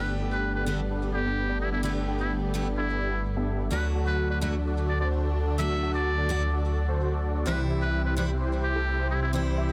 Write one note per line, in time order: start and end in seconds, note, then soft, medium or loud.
0.00 3.69 G1 medium
0.00 0.64 D3 medium
0.00 3.68 G3 medium
0.00 0.64 A3 medium
0.00 3.68 A3 medium
0.00 0.15 B3 medium
0.00 0.64 B3 medium
0.00 3.68 B3 medium
0.00 0.15 D4 medium
0.00 0.15 G4 medium
0.00 0.65 G4 medium
0.00 0.15 A4 medium
0.00 0.11 B4 medium
0.00 0.15 D5 loud
0.20 0.53 B3 medium
0.20 0.53 D4 medium
0.20 0.53 G4 medium
0.20 0.53 A4 medium
0.20 0.53 G5 loud
0.32 0.53 B4 medium
0.55 0.88 B3 medium
0.55 0.88 D4 medium
0.55 0.88 G4 medium
0.55 0.88 A4 medium
0.55 0.63 B4 medium
0.55 0.88 D5 medium
0.66 0.79 D3 medium
0.66 0.79 A3 medium
0.66 0.79 B3 medium
0.66 0.80 G4 medium
0.66 0.74 B4 medium
0.91 1.23 B3 medium
0.91 1.23 D4 medium
0.91 1.23 G4 medium
0.91 1.23 A4 medium
0.91 1.23 D5 loud
1.14 1.58 G4 medium
1.26 1.46 B3 medium
1.26 1.46 D4 medium
1.26 1.46 G4 medium
1.26 1.46 A4 medium
1.26 1.46 B4 loud
1.49 1.70 B3 medium
1.49 1.70 D4 medium
1.49 1.70 G4 medium
1.49 1.70 A4 medium
1.49 1.70 D5 medium
1.61 1.70 E4 medium
1.72 1.83 B3 medium
1.72 1.83 D4 medium
1.72 1.80 E4 medium
1.72 1.83 G4 medium
1.72 1.83 A4 medium
1.72 1.83 D5 medium
1.83 2.51 D3 medium
1.83 2.52 A3 medium
1.83 2.03 B3 medium
1.83 2.52 B3 medium
1.83 2.03 D4 medium
1.83 1.92 E4 medium
1.83 2.03 G4 medium
1.83 2.52 G4 medium
1.83 2.03 A4 medium
1.83 2.03 D5 loud
2.08 2.40 B3 medium
2.08 2.40 D4 medium
2.08 2.40 G4 medium
2.08 2.40 A4 medium
2.08 2.40 G5 loud
2.19 2.33 E4 medium
2.43 2.75 B3 medium
2.43 2.75 D4 medium
2.43 2.75 G4 medium
2.43 2.75 A4 medium
2.43 2.75 D5 medium
2.54 2.66 D3 medium
2.54 2.67 A3 medium
2.54 2.67 B3 medium
2.54 2.67 G4 medium
2.78 3.10 B3 medium
2.78 3.10 D4 medium
2.78 3.25 E4 medium
2.78 3.10 G4 medium
2.78 3.10 A4 medium
2.78 3.10 D5 medium
3.37 3.69 B3 medium
3.37 3.69 D4 medium
3.37 3.69 G4 medium
3.37 3.69 A4 medium
3.37 3.69 E5 medium
3.71 7.44 D2 medium
3.71 4.39 D3 medium
3.71 4.39 F#3 medium
3.71 7.43 F#3 medium
3.71 7.43 A3 medium
3.71 4.39 A3 medium
3.71 7.43 D4 medium
3.71 3.90 F#4 medium
3.71 4.40 F#4 medium
3.71 3.90 A4 medium
3.71 3.86 B4 medium
3.71 3.90 D5 loud
3.95 4.27 F#4 medium
3.95 4.27 A4 medium
3.95 4.27 F#5 loud
4.07 4.28 B4 medium
4.30 4.63 F#4 medium
4.30 4.63 A4 medium
4.30 4.38 B4 medium
4.30 4.63 D5 medium
4.41 4.54 D3 medium
4.41 4.54 F#3 medium
4.41 4.54 A3 medium
4.41 4.55 F#4 loud
4.41 4.49 B4 medium
4.65 4.98 F#4 medium
4.65 4.98 A4 medium
4.65 4.98 D5 medium
4.89 4.96 D5 medium
5.00 5.21 F#4 medium
5.00 5.21 A4 medium
5.00 5.21 C5 loud
5.00 5.08 D5 medium
5.24 5.45 F#4 medium
5.24 5.45 A4 medium
5.24 5.45 D5 medium
5.47 5.57 F#4 medium
5.47 5.57 A4 medium
5.47 5.57 D5 medium
5.58 6.26 D3 medium
5.58 6.27 F#3 medium
5.58 6.27 A3 medium
5.58 5.78 F#4 medium
5.58 6.27 F#4 medium
5.58 5.78 A4 medium
5.58 5.78 D5 loud
5.58 5.92 E5 medium
5.83 6.15 F#4 medium
5.83 6.15 A4 medium
5.83 6.15 F#5 loud
5.94 6.60 D5 medium
6.18 6.50 F#4 medium
6.18 6.50 A4 medium
6.18 6.50 D5 medium
6.29 6.42 D3 medium
6.29 6.42 F#3 medium
6.29 6.42 A3 medium
6.29 6.42 F#4 loud
6.53 6.85 F#4 medium
6.53 6.85 A4 medium
6.53 6.85 D5 loud
6.88 7.09 F#4 medium
6.88 7.09 A4 medium
6.88 7.09 C5 loud
7.12 7.32 F#4 medium
7.12 7.32 A4 medium
7.12 7.32 D5 medium
7.35 7.45 F#4 medium
7.35 7.45 A4 medium
7.35 7.45 D5 medium
7.46 9.72 C2 medium
7.46 8.14 C3 medium
7.46 8.14 E3 medium
7.46 9.72 E3 medium
7.46 9.72 G3 medium
7.46 8.14 G3 medium
7.46 9.72 C4 medium
7.46 7.65 E4 medium
7.46 8.15 E4 medium
7.46 7.65 G4 medium
7.46 7.61 B4 medium
7.46 7.65 C5 loud
7.70 8.03 E4 medium
7.70 8.03 G4 medium
7.70 8.03 E5 loud
7.82 8.03 B4 medium
8.05 8.38 E4 medium
8.05 8.38 G4 medium
8.05 8.13 B4 medium
8.05 8.38 C5 medium
8.16 8.29 C3 medium
8.16 8.29 E3 medium
8.16 8.29 G3 medium
8.16 8.30 E4 loud
8.16 8.25 B4 medium
8.41 8.73 E4 medium
8.41 8.73 G4 medium
8.41 8.73 C5 loud
8.64 9.08 G4 medium
8.76 8.96 E4 medium
8.76 8.96 G4 medium
8.76 8.96 A4 loud
8.99 9.20 E4 medium
8.99 9.20 G4 medium
8.99 9.20 C5 medium
9.11 9.20 E4 medium
9.22 9.30 E4 medium
9.22 9.32 E4 medium
9.22 9.32 G4 medium
9.22 9.32 C5 medium
9.33 9.72 C3 medium
9.33 9.72 E3 medium
9.33 9.72 G3 medium
9.33 9.53 E4 medium
9.33 9.42 E4 medium
9.33 9.72 E4 medium
9.33 9.53 G4 medium
9.33 9.53 C5 loud
9.58 9.72 E4 medium
9.58 9.72 G4 medium
9.58 9.72 E5 loud